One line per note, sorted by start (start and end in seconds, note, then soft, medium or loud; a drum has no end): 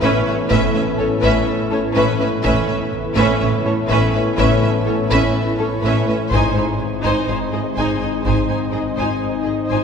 0.00 0.10 A1 medium
0.00 0.10 A2 medium
0.00 0.50 A2 medium
0.00 2.40 E3 medium
0.00 2.40 A3 medium
0.00 1.51 B3 soft
0.00 2.40 B3 medium
0.00 2.40 C#4 medium
0.00 0.25 C#4 medium
0.00 2.44 E4 medium
0.00 2.40 B4 soft
0.00 0.25 B4 medium
0.00 2.43 C#5 medium
0.00 0.25 E5 medium
0.00 taiko medium
0.26 0.35 A2 soft
0.26 0.37 C#4 medium
0.26 0.34 B4 medium
0.26 0.35 E5 soft
0.50 0.59 A1 medium
0.50 0.58 A2 medium
0.50 1.95 A2 medium
0.50 0.74 C#4 medium
0.50 0.73 B4 medium
0.50 0.73 E5 medium
0.50 taiko medium
0.74 0.83 A2 medium
0.74 0.83 C#4 soft
0.74 0.82 B4 soft
0.74 0.83 E5 medium
0.98 1.08 A1 soft
0.98 1.07 A2 medium
0.98 1.47 A3 soft
0.98 1.08 C#4 soft
0.98 1.06 A4 medium
0.98 1.07 C#5 soft
1.22 1.31 A2 medium
1.22 1.46 C#4 medium
1.22 1.45 B4 medium
1.22 1.46 E5 medium
1.22 taiko medium
1.48 4.85 A3 medium
1.71 1.80 A2 soft
1.71 1.80 C#4 medium
1.71 1.79 A4 medium
1.71 1.80 C#5 medium
1.95 2.04 A1 medium
1.95 2.04 A2 medium
1.95 2.43 A2 medium
1.95 2.18 C#4 medium
1.95 2.18 B4 medium
1.95 2.18 E5 medium
2.19 2.28 A2 medium
2.19 2.27 C#4 medium
2.19 2.27 B4 medium
2.19 2.28 E5 medium
2.44 2.53 A1 medium
2.44 2.52 A2 medium
2.44 2.92 A2 medium
2.44 6.15 E3 medium
2.44 6.15 A3 medium
2.44 6.14 B3 medium
2.44 6.14 C#4 medium
2.44 2.67 C#4 medium
2.44 6.28 E4 medium
2.44 2.66 B4 medium
2.44 6.28 B4 medium
2.44 6.27 C#5 soft
2.44 2.67 E5 medium
2.44 taiko medium
2.67 2.76 A2 soft
2.67 2.76 C#4 soft
2.67 2.75 B4 soft
2.67 2.76 E5 soft
2.93 3.40 A2 medium
3.16 3.25 A2 medium
3.16 3.39 C#4 medium
3.16 3.39 B4 medium
3.16 3.39 E5 medium
3.16 taiko medium
3.40 3.50 A1 soft
3.40 3.49 A2 soft
3.40 3.89 A2 medium
3.40 3.50 C#4 soft
3.40 3.49 B4 medium
3.40 3.48 E5 soft
3.65 3.73 A2 soft
3.65 3.73 C#4 medium
3.65 3.74 A4 soft
3.65 3.74 C#5 soft
3.89 3.97 A1 medium
3.89 4.37 A2 medium
3.89 3.98 A2 medium
3.89 4.12 C#4 medium
3.89 4.11 B4 medium
3.89 4.12 E5 medium
3.89 taiko medium
4.12 4.22 A2 soft
4.12 4.22 C#4 soft
4.12 4.21 B4 soft
4.12 4.23 E5 soft
4.37 4.46 A1 medium
4.37 4.46 A2 medium
4.37 5.82 A2 medium
4.37 4.60 C#4 medium
4.37 4.59 B4 medium
4.37 4.60 E5 medium
4.37 taiko medium
4.60 4.70 A2 medium
4.60 4.70 C#4 medium
4.60 4.68 B4 soft
4.60 4.71 E5 medium
4.84 4.95 A1 soft
4.84 4.94 A2 soft
4.84 5.34 A3 soft
4.84 4.95 C#4 soft
4.84 4.92 A4 medium
4.84 4.95 C#5 soft
5.09 5.18 A2 medium
5.09 5.34 C#4 medium
5.09 5.32 B4 medium
5.09 5.33 E5 medium
5.09 taiko medium
5.35 6.35 A3 soft
5.58 5.67 A2 soft
5.58 5.68 C#4 soft
5.58 5.66 A4 medium
5.58 5.67 C#5 soft
5.82 5.91 A1 medium
5.82 5.91 A2 medium
5.82 6.35 A2 soft
5.82 6.06 C#4 medium
5.82 6.05 B4 medium
5.82 6.06 E5 medium
6.07 6.15 A2 medium
6.07 6.16 C#4 medium
6.07 6.15 B4 medium
6.07 6.17 E5 soft
6.30 6.40 G#1 medium
6.30 6.39 G#2 medium
6.30 6.79 G#2 medium
6.30 9.84 D#3 medium
6.30 9.84 G#3 medium
6.30 9.84 C4 medium
6.30 9.84 D#4 medium
6.30 6.55 D#4 medium
6.30 6.53 C5 medium
6.30 9.84 C5 medium
6.30 9.84 D#5 medium
6.30 6.55 G#5 medium
6.30 taiko medium
6.54 6.63 G#2 soft
6.54 6.64 D#4 soft
6.54 6.62 C5 soft
6.54 6.65 G#5 soft
6.80 7.27 G#2 soft
7.03 7.11 G#2 medium
7.03 7.27 D#4 medium
7.03 7.26 C5 medium
7.03 7.27 G#5 medium
7.03 taiko medium
7.28 7.37 G#1 soft
7.28 7.36 G#2 soft
7.28 7.76 G#2 soft
7.28 7.37 D#4 soft
7.28 7.36 C5 soft
7.28 7.36 G#5 soft
7.51 7.59 G#2 soft
7.51 7.61 D#4 soft
7.51 7.60 G#4 soft
7.51 7.61 D#5 soft
7.75 7.85 G#1 medium
7.75 7.83 G#2 medium
7.75 8.24 G#2 soft
7.75 8.00 D#4 medium
7.75 8.00 C5 medium
7.75 7.99 G#5 medium
7.75 taiko medium
7.99 8.07 G#2 soft
7.99 8.10 D#4 soft
7.99 8.09 C5 soft
7.99 8.08 G#5 soft
8.24 8.33 G#1 medium
8.24 8.32 G#2 medium
8.24 9.69 G#2 medium
8.24 8.48 D#4 soft
8.24 8.47 C5 soft
8.24 8.48 G#5 medium
8.24 taiko medium
8.48 8.56 G#2 soft
8.48 8.58 D#4 soft
8.48 8.56 C5 soft
8.48 8.57 G#5 soft
8.72 8.82 G#1 soft
8.72 8.81 G#2 soft
8.72 9.22 G#3 soft
8.72 8.83 D#4 soft
8.72 8.80 G#4 soft
8.72 8.81 D#5 soft
8.96 9.05 G#2 medium
8.96 9.21 D#4 medium
8.96 9.19 C5 soft
8.96 9.20 G#5 soft
8.96 taiko medium
9.23 9.84 G#3 soft
9.44 9.53 G#2 soft
9.44 9.52 G#4 soft
9.44 9.54 D#5 soft
9.48 9.56 D#4 soft
9.69 9.78 G#1 soft
9.69 9.77 G#2 soft
9.69 9.84 G#2 soft
9.69 9.84 D#4 medium
9.69 9.84 C5 soft
9.69 9.84 G#5 soft